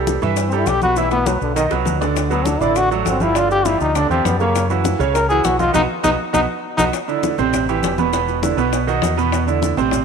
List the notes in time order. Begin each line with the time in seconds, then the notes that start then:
Already playing: C2 G3 G4 A4
0.07 high bongo, high conga, maracas
0.22 G2 E3 E4 E5, high bongo, high conga, low conga, maracas
0.36 high bongo, high conga, maracas
0.48 G3 C4, high conga, maracas
0.53 G4 A4
0.58 E4
0.66 B1 G4, high bongo, low bongo, high conga, maracas
0.82 B3 F#4 B4, high bongo, high conga, maracas
0.96 E3 E4 E5, high bongo, high conga, maracas
1.11 B3, high bongo, high conga, maracas
1.26 F#3 B3 B4, high bongo, high conga, maracas
1.41 B1 D3, high conga, maracas
1.56 D#3 D#4 D#5, low bongo, high conga, maracas
1.71 C2 F#3 F#4 B4, low bongo, high conga, maracas
1.85 D2, low bongo, high conga, maracas
2.01 D3 D4 D5, low bongo, high conga, maracas
2.16 high bongo, high conga, maracas
2.30 F#3 B3 F#4 A4, high bongo, high conga, maracas
2.45 D4, high bongo, high conga, maracas
2.60 A1 D3 D4 E4 D5, high bongo, high conga, low conga, maracas
2.76 F#4, high bongo, high conga, maracas
2.91 F#3 A3 F#4 A4, high conga, maracas
3.05 G1 C4, high bongo, low bongo, high conga, maracas
3.20 F3 E4 F4 G4, high bongo, high conga, maracas
3.35 D3 D4 F4 D5, high bongo, high conga, maracas
3.51 G4, high bongo, high conga, maracas
3.65 F3 E4 F4 G4, high bongo, high conga, maracas
3.80 D2 D#4, high bongo, high conga, maracas
3.95 D3 D4 D5, high bongo, high conga, maracas
4.10 E2 F3 C4 F4 G4, high conga, maracas
4.25 F#2 B3, high bongo, low bongo, high conga, maracas
4.40 C#3 A#3 C#4 C#5, high bongo, high conga, maracas
4.55 high bongo, high conga, maracas
4.70 E3 E4 F#4, high bongo, high conga, maracas
4.84 high bongo, high conga, maracas
4.99 C#2 C#3 C#4 C#5, high bongo, high conga, low conga, maracas
5.14 A#4, high bongo, high conga, maracas
5.29 E3 E4 F#4 G#4, high conga, maracas
5.44 B1 F#4, high bongo, low bongo, high conga, maracas
5.59 D#3 D#4 F4 F#4, high bongo, high conga, maracas
5.74 B1 B3 D#4 F#4, low bongo, high conga, maracas
6.04 B1 B3 D#4 F#4, low bongo, high conga, maracas
6.33 B1 B3 D#4 F#4, low bongo, high conga, maracas
6.78 B1 B3 D#4 F#4, low bongo, high conga, maracas
6.93 high bongo, high conga, maracas
7.08 D3 D4 E4, high bongo, high conga, maracas
7.23 high bongo, high conga, maracas
7.38 A1 C3 C4 C5, high bongo, high conga, low conga, maracas
7.53 high bongo, high conga, low conga, maracas
7.68 E3 E4 G4, high conga, maracas
7.83 E1, high bongo, low bongo, high conga, maracas
7.98 B2 B3 B4, high bongo, high conga, maracas
8.13 B2 B3 B4, high bongo, high conga, maracas
8.27 high bongo, high conga, maracas
8.42 D3 D4 E4, high bongo, high conga, maracas
8.57 B1 B2 B3 B4, high bongo, high conga, maracas
8.73 high bongo, high conga, maracas
8.87 D#3 D#4 F#4, high conga, maracas
9.02 E2, high bongo, low bongo, high conga, maracas
9.17 B2 B3 B4, high bongo, high conga, maracas
9.32 high bongo, high conga, maracas
9.47 D3 D4 E4, high bongo, high conga, maracas
9.62 high bongo, high conga, maracas
9.77 A1 C3 C4 C5, high bongo, high conga, low conga, maracas
9.91 high bongo, high conga, low conga, maracas